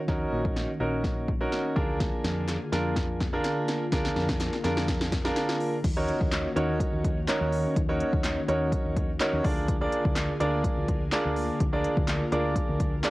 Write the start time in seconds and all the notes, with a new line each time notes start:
Already playing: D#3 A#3 C#4 F#4
0.08 D#2 C#4 D#4 F#4 A#4, kick, snare
0.32 A#1
0.45 kick
0.56 snare
0.80 A#1 C#4 D#4 F#4 A#4
1.04 kick, snare
1.28 kick
1.41 C#4 D#4 F#4 A#4
1.52 snare
1.76 D2 D3 D4 F4 G#4 A#4, kick
2.00 kick, snare, closed hi-hat
2.24 F2, snare, closed hi-hat
2.48 snare, clap, closed hi-hat
2.72 F2 D4 F4 G#4 A#4, snare, closed hi-hat
2.96 kick, snare, closed hi-hat
3.20 kick, snare, closed hi-hat
3.33 D4 F4 G#4 A#4
3.44 snare, clap, closed hi-hat
3.68 A#4, snare, closed hi-hat
3.92 D2 D4 F4 G#4 A#4, kick, snare, closed hi-hat
4.05 snare
4.16 F2, snare, closed hi-hat
4.29 kick, snare
4.40 snare, clap, closed hi-hat
4.53 snare
4.64 F2 D4 F4 G#4 A#4, snare, closed hi-hat
4.77 snare
4.88 kick, snare, closed hi-hat
5.01 snare
5.12 kick, snare, closed hi-hat
5.25 D4 F4 G#4 A#4, snare
5.36 snare, clap, closed hi-hat
5.49 snare
5.60 open hi-hat
5.84 D#2 D#3 A#3 C#4 F#4, kick, closed hi-hat, crash
5.97 C#4 D#4 F#4 A#4 C#5
6.09 closed hi-hat
6.21 D#2, kick
6.32 snare, clap, closed hi-hat
6.56 D#2 C#4 D#4 F#4 A#4 C#5, closed hi-hat
6.80 kick, closed hi-hat
6.93 D#2
7.04 kick, closed hi-hat
7.28 C#4 D#4 F#4 A#4 C#5, snare, clap, closed hi-hat
7.41 D#2
7.52 open hi-hat
7.76 D#2, kick, closed hi-hat
7.89 C#4 D#4 F#4 A#4 C#5
8.00 closed hi-hat
8.13 D#2, kick
8.24 snare, clap, closed hi-hat
8.48 D#2 C#4 D#4 F#4 A#4 C#5, closed hi-hat
8.72 kick, closed hi-hat
8.85 D#2
8.97 kick, closed hi-hat
9.20 C#4 D#4 F#4 A#4 C#5, snare, clap, closed hi-hat
9.33 D#2
9.44 D2 D3 A#3 D4 F4 G#4 A#4 D5, kick, open hi-hat
9.68 kick, closed hi-hat
9.81 D4 F4 G#4 A#4 D5
9.92 closed hi-hat
10.05 D2, kick
10.16 snare, clap, closed hi-hat
10.40 D2 D4 F4 G#4 A#4 D5, closed hi-hat
10.64 kick, closed hi-hat
10.77 D2
10.88 kick, closed hi-hat
11.12 D4 F4 G#4 A#4 D5, snare, clap, closed hi-hat
11.25 D2
11.36 A#4, open hi-hat
11.60 D2, kick, closed hi-hat
11.73 D4 F4 G#4 A#4 D5
11.84 closed hi-hat
11.97 D2, kick
12.08 snare, clap, closed hi-hat
12.32 D2 D4 F4 G#4 A#4 D5, closed hi-hat
12.56 kick, closed hi-hat
12.69 D2
12.80 kick, closed hi-hat
13.03 D4 F4 G#4 A#4 D5, snare, clap, closed hi-hat